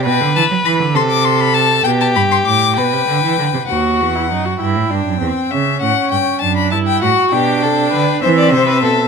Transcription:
X:1
M:6/8
L:1/16
Q:3/8=66
K:Gmix
V:1 name="Violin"
g2 a2 b2 c' d' c' b a2 | g a b c' d'2 g6 | _g6 =g6 | e2 ^f2 g2 a b a g f2 |
g6 e6 |]
V:2 name="Violin"
B6 A6 | G6 B6 | z12 | z12 |
G2 A2 B2 c d c B A2 |]
V:3 name="Viola"
z12 | z12 | _G3 E _E G =E2 D2 C2 | ^C6 D2 E2 ^F2 |
D6 C6 |]
V:4 name="Cello" clef=bass
B,, D, E, ^F, E, D, C,6 | B,,2 G,,2 A,,2 B,, C, D, E, D, C, | _E,,2 =E,,2 _G,,2 =G,, A,, G,, ^F,, E,,2 | ^C,2 A,,2 G,,2 ^F,,2 G,,2 A,,2 |
B,,2 C,2 D,2 E,2 C,2 B,,2 |]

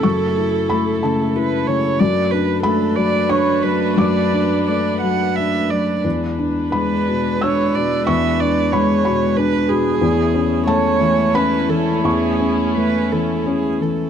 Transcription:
X:1
M:3/4
L:1/8
Q:1/4=90
K:A
V:1 name="Viola"
A4 B c | d B A d c B | d2 d f e d | z2 B2 c d |
e d c2 B G- | G2 c2 B A | G2 B A G A |]
V:2 name="String section"
[A,EA]6 | [A,DB]6- | [A,DB]6 | [G,DB]6- |
[G,DB]6 | [A,CE]6- | [A,CE]6 |]
V:3 name="Felt piano"
c'2 b a3 | z2 b2 c'2 | d'4- d' z | z2 b2 e'2 |
c'2 b b3 | z2 a2 b2 | c'4- c' z |]
V:4 name="Felt piano" clef=bass
[F,,C,] E A, C, E C, | F,, D A, F, D F, | F,, D A, F, D F, | E,, D G, B,, D B,, |
E,, D G, B,, D B,, | E,, C A, E, C E, | E,, C A, E, C E, |]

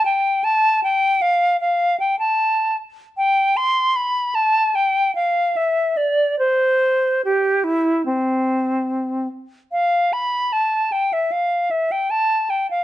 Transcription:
X:1
M:4/4
L:1/16
Q:1/4=75
K:C
V:1 name="Flute"
g2 a2 g2 f2 f2 g a3 z2 | g2 c'2 b2 a2 g2 f2 e2 d2 | c4 G2 E2 C6 z2 | f2 b2 a2 g e f2 e g a2 g f |]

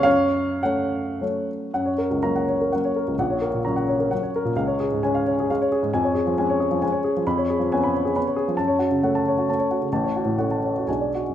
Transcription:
X:1
M:3/4
L:1/16
Q:1/4=130
K:F#m
V:1 name="Grand piano"
[c^e]4 [cf]6 z2 | [K:F#] f c A C,, a f c A f c A C,, | f c A A,, a f c A f c A A,, | e c G G,, g e c G e c G G,, |
g c G E, g c G E, g c G E, | [K:F#m] b c G ^E, g b c G b c G E, | a c F C, f a c F a c F C, | a c F A,, f a c F g d F F,, |]
V:2 name="Grand piano"
F,,4 [A,C]4 [F,A,C]4 | [K:F#] F,,4 [F,A,C]4 [F,A,C]4 | A,,,4 [F,C]4 [F,C]4 | C,,4 [G,C]4 [G,C]4 |
E,,4 [G,C]4 [G,C]4 | [K:F#m] ^E,,4 [B,C]4 [B,C]4 | F,,4 [A,C]4 [A,C]4 | A,,,4 [A,C]4 [B,,,G,D]4 |]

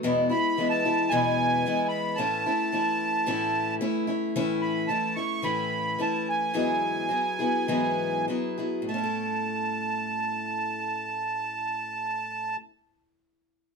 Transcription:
X:1
M:4/4
L:1/16
Q:1/4=107
K:A
V:1 name="Accordion"
z2 b3 a3 g6 b2 | a12 z4 | z2 b2 a2 c'2 b4 a2 g2- | g12 z4 |
a16- | a16 |]
V:2 name="Steel-string acoustic guitar"
[E,,B,,E,G,B,E]2 [E,G,B,E]2 [E,G,B,E]2 [E,G,B,E]2 [E,,B,,E,G,B,E]4 [E,G,B,E]4 | [A,,E,A,CE]2 [A,CE]2 [E,A,CE]4 [A,,E,A,CE]4 [E,A,CE]2 [A,CE]2 | [A,,E,A,CE]4 [E,A,CE]2 [A,CE]2 [A,,E,A,CE]4 [E,A,CE]4 | [G,,E,F,B,EG]4 [F,B,EG]2 [F,B,EG]2 [G,,E,F,B,EG]4 [F,B,EG]2 [F,B,EG]2 |
[A,,A,CEA]16- | [A,,A,CEA]16 |]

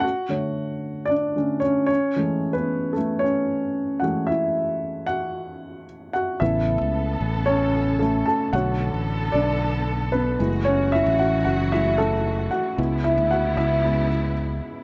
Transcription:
X:1
M:4/4
L:1/16
Q:1/4=113
K:F#m
V:1 name="Grand piano"
[Ff]8 [Dd]4 [Cc]2 [Cc]2- | [Cc]3 [B,B]3 [A,A]2 [Cc]6 [Ff]2 | [Ee]6 [Ff]6 z2 [Ff]2 | [Ee]8 [Cc]4 [A,A]2 [Aa]2 |
[Ff]6 [Dd]6 [B,B]3 z | [Cc]2 [Ee]2 [Ff]2 [Ff]2 e2 [A,A]4 [Ff]2- | [Ff]2 [Ee]2 [Ff]2 [Ee]6 z4 |]
V:2 name="Grand piano"
z2 [D,A,c]8 [D,A,C]2 z4 | [E,G,A,]6 z8 [E,G,A,]2- | [E,G,A,]12- [E,G,A,]2 z2 | [C,A,B,]16 |
[D,A,c]12- [D,A,c]2 [G,A,E]2- | [G,A,E]4 z4 [G,A,E]2 z6 | [G,B,E]2 z6 [G,B,E]2 z6 |]
V:3 name="String section"
z16 | z16 | z16 | [C,B,A]16 |
[D,B,A]12- [D,B,A]2 [E,F,F]2- | [E,F,F]16 | [C,B,E]16 |]
V:4 name="Fingered electric bass" clef=bass
z16 | z16 | z16 | A,,,3 C,,3 A,,,8 z2 |
B,,,3 A,,,3 B,,,8 F,,,2- | F,,,3 A,,,3 F,,,8 z2 | C,,3 D,,3 C,,8 z2 |]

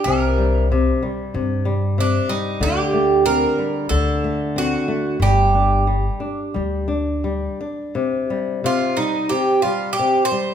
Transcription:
X:1
M:4/4
L:1/8
Q:1/4=92
K:Gm
V:1 name="Bouzouki"
B2 z4 D E | G2 B2 A2 ^F2 | G6 z2 | [K:Cm] z2 F E G F G c |]
V:2 name="Nylon-string guitar" clef=bass
C, G, C, G, C, G, C, G, | D, A, C G, D, A, C A, | G, D G, D G, D G, D | [K:Cm] C, G, C, G, C, G, C, G, |]
V:3 name="Upright bass" clef=bass
C,,4 G,,4 | D,,4 D,,4 | G,,,4 D,,4 | [K:Cm] z8 |]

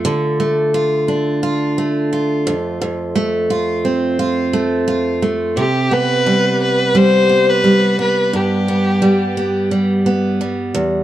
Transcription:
X:1
M:4/4
L:1/16
Q:1/4=87
K:Gmix
V:1 name="Violin"
z16 | z16 | G2 B4 B2 c3 B3 B2 | G6 z8 z2 |]
V:2 name="Steel-string acoustic guitar"
D,2 A,2 F2 D2 F2 A,2 F2 F,,2 | F,,2 A,2 F2 C2 F2 A,2 F2 A,2 | C,2 B,2 G,4 G,2 B,2 G,2 B,2 | G,,2 B,2 G,2 B,2 G,2 B,2 G,2 E,,2 |]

